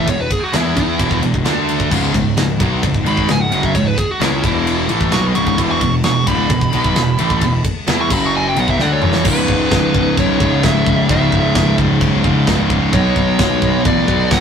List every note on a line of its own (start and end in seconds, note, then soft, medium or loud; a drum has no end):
0.07 0.29 E1 medium
0.07 0.25 E2 medium
0.07 0.26 B2 medium
0.07 0.19 C#5 loud
0.07 kick loud
0.07 ride loud
0.21 0.32 B4 loud
0.31 0.42 G#4 loud
0.31 kick loud
0.31 ride medium
0.43 0.55 F#4 medium
0.52 0.96 E2 medium
0.52 0.98 E3 loud
0.52 0.98 B3 loud
0.52 0.99 E4 loud
0.52 0.75 E4 medium
0.52 snare loud
0.52 ride loud
0.77 1.21 E4 loud
0.77 kick medium
0.77 ride medium
0.98 1.21 E1 loud
0.98 1.20 E2 loud
0.98 1.21 B2 medium
0.98 1.21 E3 loud
0.98 kick loud
0.98 ride loud
1.11 kick medium
1.21 1.44 E1 medium
1.21 1.40 E2 medium
1.21 1.40 B2 medium
1.21 ride medium
1.34 kick medium
1.44 1.88 D2 medium
1.44 1.90 D3 medium
1.44 1.90 A3 medium
1.44 1.91 D4 loud
1.44 snare loud
1.44 ride loud
1.69 ride medium
1.80 kick medium
1.91 2.13 C#1 medium
1.91 2.13 C#2 medium
1.91 2.13 G#2 loud
1.91 2.14 C#3 loud
1.91 kick loud
1.91 crash loud
2.14 2.36 C#1 medium
2.14 2.32 C#2 medium
2.14 2.32 G#2 medium
2.14 kick medium
2.14 ride medium
2.37 2.59 C#1 medium
2.37 2.55 C#2 medium
2.37 2.55 G#2 medium
2.37 snare loud
2.37 ride loud
2.60 2.81 B1 medium
2.60 2.82 B2 medium
2.60 2.82 F#3 loud
2.60 2.83 B3 loud
2.60 kick loud
2.60 ride medium
2.83 3.04 C#1 medium
2.83 3.01 C#2 medium
2.83 3.02 G#2 medium
2.83 kick loud
2.83 ride loud
2.94 kick medium
3.06 3.27 G#1 loud
3.06 3.28 G#2 medium
3.06 3.28 D#3 medium
3.06 3.29 G#3 loud
3.06 3.29 B5 loud
3.06 ride medium
3.17 kick medium
3.29 3.51 C#1 medium
3.29 3.47 C#2 medium
3.29 3.47 G#2 medium
3.29 3.41 G#5 loud
3.29 snare loud
3.29 ride medium
3.41 3.52 F#5 loud
3.52 3.74 F#1 loud
3.52 3.74 F#2 medium
3.52 3.74 C#3 medium
3.52 3.74 F#3 loud
3.52 3.63 F#5 medium
3.52 ride medium
3.63 3.75 E5 loud
3.63 kick loud
3.75 3.96 C#1 medium
3.75 3.93 C#2 medium
3.75 3.93 G#2 medium
3.75 3.86 C#5 loud
3.75 kick loud
3.75 ride loud
3.87 3.98 B4 loud
3.98 4.09 G#4 medium
3.98 kick medium
3.98 ride medium
4.11 4.21 F#4 medium
4.20 4.42 C#2 medium
4.20 4.42 C#3 medium
4.20 4.43 G#3 loud
4.20 4.43 C#4 loud
4.20 4.43 E4 loud
4.20 snare loud
4.20 ride loud
4.43 4.86 E1 loud
4.43 4.88 E2 loud
4.43 4.88 B2 loud
4.43 4.88 E3 loud
4.43 4.89 E4 loud
4.43 kick loud
4.43 ride medium
4.67 ride loud
4.88 5.11 A1 loud
4.88 5.11 A2 medium
4.88 5.11 E3 loud
4.88 5.12 A3 loud
4.88 ride medium
5.01 kick medium
5.11 5.34 B1 medium
5.11 5.34 B2 medium
5.11 5.34 F#3 loud
5.11 5.35 B3 medium
5.11 5.24 C#6 loud
5.11 snare loud
5.11 ride loud
5.34 5.57 C#1 medium
5.34 5.57 C#2 medium
5.34 5.57 G#2 loud
5.34 5.58 C#3 loud
5.34 5.47 C#6 loud
5.34 ride medium
5.47 5.59 C#6 medium
5.47 kick medium
5.57 5.80 E1 medium
5.57 5.80 E2 medium
5.57 5.80 B2 loud
5.57 5.81 E3 loud
5.57 kick loud
5.57 ride loud
5.71 5.81 C#6 loud
5.81 6.03 E1 medium
5.81 5.99 E2 medium
5.81 6.00 B2 medium
5.81 5.93 C#6 medium
5.81 kick medium
5.81 ride medium
6.04 6.25 E1 medium
6.04 6.23 E2 medium
6.04 6.23 B2 medium
6.04 6.27 C#6 medium
6.04 snare loud
6.04 ride loud
6.27 6.49 D1 loud
6.27 6.49 D2 loud
6.27 6.49 A2 loud
6.27 6.50 D3 loud
6.27 7.61 B5 loud
6.27 kick loud
6.27 ride medium
6.49 6.72 E1 medium
6.49 6.68 E2 medium
6.49 6.68 B2 medium
6.49 kick loud
6.49 ride loud
6.61 kick medium
6.72 6.94 B1 loud
6.72 6.95 B2 medium
6.72 6.95 F#3 loud
6.72 6.95 B3 loud
6.72 ride medium
6.84 kick loud
6.95 7.18 E1 medium
6.95 7.14 E2 medium
6.95 7.14 B2 medium
6.95 snare loud
6.95 ride loud
7.18 7.41 A1 loud
7.18 7.41 A2 loud
7.18 7.41 E3 loud
7.18 7.41 A3 loud
7.18 ride medium
7.30 kick loud
7.41 7.63 E1 medium
7.41 7.60 E2 medium
7.41 7.60 B2 medium
7.41 kick loud
7.41 ride loud
7.64 kick medium
7.64 ride medium
7.87 8.09 E2 loud
7.87 8.10 E3 loud
7.87 8.10 B3 loud
7.87 8.10 E4 loud
7.87 snare loud
7.87 ride loud
8.01 8.11 C#6 loud
8.10 8.53 F#1 loud
8.10 8.55 F#2 loud
8.10 8.56 C#3 loud
8.10 8.55 F#3 loud
8.10 8.26 B5 loud
8.10 kick loud
8.10 crash loud
8.26 8.35 C#6 medium
8.36 8.46 G#5 medium
8.49 8.58 G5 loud
8.56 8.78 B1 loud
8.56 8.79 B2 loud
8.56 8.78 F#3 loud
8.56 8.79 B3 loud
8.56 ride medium
8.60 8.70 F#5 loud
8.68 8.81 E5 loud
8.68 kick medium
8.79 9.01 D2 loud
8.79 9.01 D3 medium
8.79 9.02 A3 medium
8.79 9.02 D4 loud
8.79 8.92 F#5 loud
8.79 snare medium
8.93 9.03 C#5 loud
9.01 9.24 E1 loud
9.01 9.23 E2 loud
9.01 9.24 B2 loud
9.01 9.25 E3 loud
9.01 9.26 C#5 loud
9.01 mid tom loud
9.14 snare loud
9.23 9.46 C#1 medium
9.23 10.38 C#2 medium
9.23 10.39 G#2 medium
9.23 10.38 C#3 loud
9.23 kick loud
9.23 crash loud
9.23 china medium
9.27 10.14 B4 loud
9.48 9.69 C#1 loud
9.48 kick loud
9.71 9.92 C#1 medium
9.71 kick loud
9.71 snare loud
9.71 china medium
9.94 10.15 C#1 loud
9.94 kick medium
10.17 10.38 B1 medium
10.17 10.64 C#5 loud
10.17 kick loud
10.17 china medium
10.39 10.61 C#1 loud
10.39 10.61 C#2 medium
10.39 10.62 G#2 medium
10.39 10.61 C#3 medium
10.39 kick loud
10.62 11.04 C#1 medium
10.62 11.07 C#2 medium
10.62 11.08 G#2 medium
10.62 11.09 C#3 medium
10.62 11.06 E5 loud
10.62 kick loud
10.62 snare loud
10.62 china medium
10.86 kick loud
11.08 11.30 C#1 medium
11.08 12.22 C#2 medium
11.08 12.23 G#2 loud
11.08 12.22 C#3 loud
11.08 11.75 E5 loud
11.08 kick loud
11.08 china medium
11.32 11.53 C#1 loud
11.32 kick medium
11.55 11.76 C#1 medium
11.55 kick loud
11.55 snare loud
11.55 china medium
11.78 11.99 C#1 loud
11.78 kick loud
12.01 12.21 B1 loud
12.01 kick loud
12.01 china medium
12.23 12.44 C#1 medium
12.23 12.45 C#2 medium
12.23 12.46 G#2 medium
12.23 12.45 C#3 medium
12.23 kick medium
12.46 12.88 C#1 medium
12.46 12.91 C#2 medium
12.46 12.92 G#2 medium
12.46 12.93 C#3 medium
12.46 kick loud
12.46 snare loud
12.46 china medium
12.70 kick loud
12.92 13.13 B1 loud
12.92 14.06 B2 medium
12.92 14.07 F#3 loud
12.92 14.05 B3 loud
12.92 13.81 C#5 loud
12.92 kick loud
12.92 china medium
13.16 13.36 B1 loud
13.16 kick loud
13.39 13.59 B1 medium
13.39 kick loud
13.39 snare loud
13.39 china medium
13.62 13.82 B1 loud
13.62 kick loud
13.85 14.05 A1 loud
13.85 14.29 D5 loud
13.85 kick loud
13.85 china medium
14.06 14.28 B1 loud
14.06 14.29 B2 medium
14.06 14.30 F#3 medium
14.06 14.29 B3 loud
14.06 kick medium
14.30 14.40 B1 medium
14.30 14.40 B2 medium
14.30 14.40 F#3 medium
14.30 14.40 B3 medium
14.30 14.40 F#5 loud
14.30 kick loud
14.30 snare loud
14.30 china medium